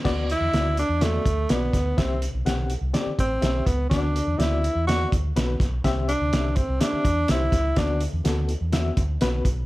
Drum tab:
CC |x-------|--------|--------|--------|
HH |-xxxxxxx|xxxxxxxx|xxxxxxxx|xxxxxxxx|
SD |o-o-o-oo|o-o-o-o-|o-o-o-oo|o-o-o-oo|
BD |o----o-o|o----o-o|o----o-o|o--o-o-o|

CC |--------|
HH |xxxxxxxx|
SD |o-o-o-o-|
BD |o----o-o|